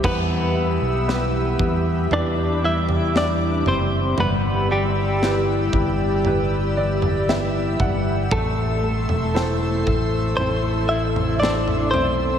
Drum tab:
CC |x---------------|----------------|----------------|
SD |----o-------o---|----o-------o---|----o-------o---|
FT |o-----o-o--o--o-|o-----o-o--o--o-|o--o--o-o--o-oo-|
BD |o-----o---------|------o-------o-|o-----o---------|